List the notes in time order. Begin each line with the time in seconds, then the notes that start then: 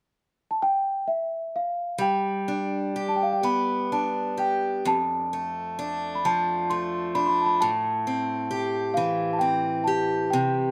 0.51 A5
0.62 G5
1.08 E5
1.56 F5
1.98 G3 G5
2.48 D4
2.96 G4
3.09 A5
3.16 G5
3.23 F5
3.33 G5
3.43 B3 B5
3.92 D4 A5
4.37 G4 G5
4.85 F2 A5
5.33 A3
5.79 D4
6.15 B5
6.25 F3 A5
6.70 A3 C6
7.15 D4 B5
7.26 B5 C6
7.42 A5
7.46 B5
7.61 A2 A5
8.07 C4
8.51 G4
8.94 E3 F5
9.33 A5
9.39 C4 G5
9.84 G4 A5
10.30 C3 G5